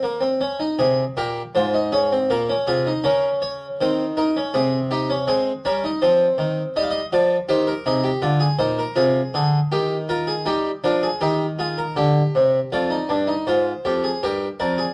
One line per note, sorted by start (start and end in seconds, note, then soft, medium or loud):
0.00 0.37 D#3 medium
0.00 0.21 A#3 medium
0.00 0.37 D#5 medium
0.21 0.40 C4 soft
0.41 0.59 C#4 medium
0.60 0.78 D#4 medium
0.79 1.02 C3 medium
0.79 1.02 G#4 medium
1.17 1.40 A#2 medium
1.17 1.40 G4 medium
1.17 1.40 A#4 medium
1.55 2.27 G#2 medium
1.55 1.73 F4 medium
1.55 1.78 C5 medium
1.74 1.92 D#4 medium
1.93 2.10 C#4 medium
1.93 2.16 G#4 medium
2.12 2.30 C4 medium
2.30 2.53 A#2 medium
2.30 2.48 A#3 medium
2.30 2.53 A#4 medium
2.50 2.67 C#4 medium
2.67 2.90 C3 medium
2.67 2.85 F4 medium
2.67 2.90 G#4 medium
2.87 3.04 D#4 medium
3.04 3.76 C#3 medium
3.04 3.76 C#4 medium
3.04 3.27 A#4 medium
3.42 3.65 C#5 medium
3.81 4.52 D#3 medium
3.81 4.03 C4 medium
3.81 4.03 C5 medium
4.17 4.34 D#4 medium
4.17 4.40 A#4 medium
4.36 4.53 C#4 medium
4.54 5.25 C3 medium
4.54 4.77 C4 medium
4.54 4.76 G#4 medium
4.91 5.09 D#4 medium
4.91 5.13 G4 medium
5.09 5.27 C#4 medium
5.27 5.50 G#3 medium
5.27 5.51 C4 medium
5.27 5.50 G#4 medium
5.65 5.88 G3 medium
5.65 5.83 C#4 medium
5.65 5.88 A#4 medium
5.84 6.01 D#4 medium
6.02 6.25 F3 medium
6.02 6.73 C4 medium
6.02 6.73 C5 medium
6.38 6.61 D#3 medium
6.76 6.99 G3 medium
6.76 6.99 D#4 medium
6.76 6.80 D#5 medium
6.83 6.89 F5 medium
6.91 7.04 D#5 medium
7.12 7.35 F3 medium
7.12 7.35 F4 medium
7.12 7.35 D5 medium
7.49 7.72 D#3 medium
7.49 7.72 G4 medium
7.49 7.67 C5 medium
7.67 7.85 A#4 medium
7.86 8.09 C3 medium
7.86 8.09 D#4 medium
7.86 8.04 G#4 medium
8.04 8.22 G4 medium
8.22 8.45 D3 medium
8.22 8.41 F4 medium
8.40 8.59 G#4 medium
8.59 8.82 A#2 medium
8.59 8.82 D#4 medium
8.59 8.77 C5 medium
8.78 8.96 A#4 medium
8.95 9.19 C3 medium
8.95 9.19 F4 medium
8.95 9.34 G#4 medium
9.34 9.58 D3 medium
9.34 9.58 G#4 medium
9.72 10.45 D#3 medium
9.72 9.95 G4 medium
10.09 10.32 F4 medium
10.09 10.28 A#4 medium
10.27 10.46 G#4 medium
10.46 10.69 G3 medium
10.46 10.69 D#4 medium
10.46 10.69 G4 medium
10.84 11.07 F3 medium
10.84 11.07 D4 medium
10.84 11.02 A#4 medium
11.03 11.21 G#4 medium
11.21 11.94 D#3 medium
11.21 11.45 D#4 medium
11.21 11.44 G4 medium
11.59 11.82 F4 medium
11.59 11.77 G#4 medium
11.78 11.96 A#4 medium
11.96 12.20 D3 medium
11.96 12.70 G4 medium
12.35 12.58 C3 medium
12.72 12.96 F2 medium
12.72 12.91 F4 medium
12.72 13.46 D5 medium
12.90 13.09 D#4 medium
13.09 13.33 G2 medium
13.09 13.28 D4 medium
13.27 13.46 D#4 medium
13.47 13.71 G#2 medium
13.47 13.71 F4 medium
13.47 14.20 C5 medium
13.85 14.08 F2 medium
13.85 14.03 G4 medium
14.04 14.22 G#4 medium
14.23 14.46 G2 medium
14.23 14.46 G4 medium
14.23 14.46 A#4 medium
14.60 14.83 F2 medium
14.60 14.78 A#4 medium
14.60 14.94 D5 medium
14.78 14.94 G#4 medium